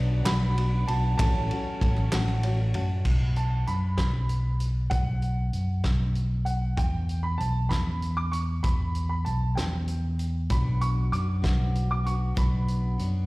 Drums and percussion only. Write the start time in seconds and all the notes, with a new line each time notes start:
0.26 snare, clap, ride
0.58 clap, ride
0.88 ride
1.19 kick, clap, ride
1.51 ride
1.81 kick, ride
1.97 clap
2.12 snare, clap, ride
2.28 clap
2.43 clap, ride
2.74 ride
3.05 kick, crash
3.36 closed hi-hat
3.67 closed hi-hat
3.98 kick, snare, closed hi-hat
4.29 closed hi-hat
4.60 closed hi-hat
4.91 kick, closed hi-hat
5.22 closed hi-hat
5.53 closed hi-hat
5.84 kick, snare, closed hi-hat
6.15 closed hi-hat
6.46 closed hi-hat
6.77 kick, closed hi-hat
7.09 closed hi-hat
7.40 closed hi-hat
7.71 kick, snare, closed hi-hat
8.02 closed hi-hat
8.33 closed hi-hat
8.64 kick, closed hi-hat
8.95 closed hi-hat
9.26 closed hi-hat
9.57 snare, closed hi-hat
9.88 closed hi-hat
10.19 closed hi-hat
10.50 kick, closed hi-hat
10.81 closed hi-hat
11.13 closed hi-hat
11.44 kick, snare, closed hi-hat
11.75 closed hi-hat
12.06 closed hi-hat
12.37 kick, closed hi-hat
12.68 closed hi-hat
12.99 closed hi-hat